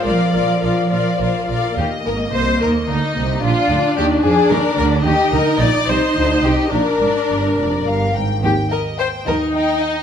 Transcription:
<<
  \new Staff \with { instrumentName = "Violin section" } { \time 6/8 \key ees \major \tempo 4. = 72 d''4. d''8 c''8 d''8 | ees''4. ees''4. | d''4. d''4. | ees''4. ees''4. |
d''4. d''8 f''8 g''8 | g''8 ees''8 g''8 ees''8 g''8 ees''8 | }
  \new Staff \with { instrumentName = "Violin section" } { \time 6/8 \key ees \major <d'' f''>8 <d'' f''>8 <d'' f''>8 <d'' f''>8 <d'' f''>8 <d'' f''>8 | g'8 bes'8 c''8 bes'8 ees'4 | f'4 g'8 aes'8 bes'8 bes'8 | g'8 bes'8 d''8 c''4 g'8 |
bes'2~ bes'8 r8 | g'8 bes'8 c''8 bes'8 ees'4 | }
  \new Staff \with { instrumentName = "Viola section" } { \time 6/8 \key ees \major <f' bes'>8 <f' bes'>8 <f' bes'>8 <f' bes'>8 <f' bes'>8 <f' bes'>8 | bes2. | d'2. | ees'4. ees'4. |
d'2~ d'16 r8. | r4. ees'4. | }
  \new Staff \with { instrumentName = "Cello section" } { \clef bass \time 6/8 \key ees \major f2~ f8 r8 | ees,8 aes,8 c8 ees8 d8 c8 | bes,8 d8 ees8 f8 ees8 d8 | ees8 d8 bes,8 c8 d8 c8 |
bes,8 aes,8 g,8 f,8 g,8 aes,8 | ees4. ees4. | }
  \new Staff \with { instrumentName = "Double bass section" } { \clef bass \time 6/8 \key ees \major bes,,8 bes,,8 bes,,8 bes,,8 bes,,8 bes,,8 | ees,8 aes,,8 c,8 ees,8 d,8 c,8 | bes,,8 d,8 ees,8 f,8 ees,8 d,8 | ees,8 d,8 bes,,8 c,8 d,8 c,8 |
bes,,8 aes,,8 g,,8 f,,8 g,,8 aes,,8 | ees,4. ees,4. | }
>>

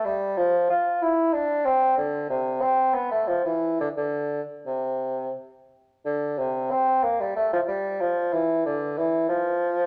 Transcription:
\new Staff \with { instrumentName = "Bassoon" } { \clef bass \time 3/4 \key c \major \tempo 4 = 92 g8 f8 f'8 e'8 d'8 c'8 | d8 c8 c'8 b16 a16 f16 e8 d16 | d8. r16 c4 r4 | \key f \major d8 c8 c'8 bes16 g16 a16 f16 g8 |
f8 e8 d8 e8 f4 | }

